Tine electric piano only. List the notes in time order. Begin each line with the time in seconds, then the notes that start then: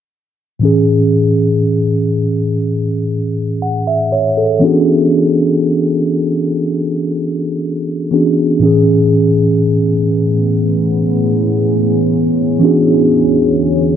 0.59 A2 E3 C#4
0.65 G#4
3.62 F#5
3.87 E5
4.12 C#5
4.37 A4
4.59 E3 B3 C#4 D4
4.64 F#4 G#4
8.11 E3 B3 C#4 D4 F#4 G#4
8.59 A2 E3 C#4
8.65 G#4
12.60 E3 B3 C#4 D4
12.64 F#4 G#4